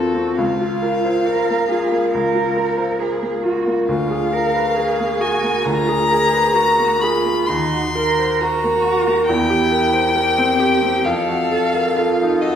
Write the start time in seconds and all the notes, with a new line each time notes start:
Already playing: D#2 C4 F4 F#4 A4 A#4
0.14 C4
0.36 C#2 F4 F5
0.61 F4
0.82 A#4
1.05 C5
1.26 A#4
1.50 A#3
1.68 F4 G#4
1.92 A#3
2.12 C#2 A#4
2.35 F4
2.56 A#4
2.78 C5
2.99 G#4 A#4
3.22 A#3
3.43 F4 F#4
3.67 A#3
3.87 D2 F4 F5
4.11 G#4
4.32 A#4
4.55 B4
4.75 G#4 A#4
5.00 A#3
5.21 F#4 G#4 G#5
5.43 A#3
5.64 D2 F4 A#5
5.88 G#4
6.09 G#4 A#4
6.33 B4
6.54 F#4 A#4
6.79 A#3
7.01 F4 G#4 B5
7.26 A#3
7.46 D#2 D#4 C6
7.72 F#4
7.95 A#4
8.19 C5
8.40 F#4 A#4 A#5
8.64 A#3
8.85 F#4
9.07 A#3
9.26 E2 E4 G5
9.50 G4
9.72 A#4
9.93 C5
10.15 G4 A#4
10.38 C4
10.59 G4
10.82 C4
11.05 F2 A4 F5
11.29 F#4
11.52 A4
11.75 A#4
11.96 F4 A4
12.22 D#4
12.41 F#4 A4 D#5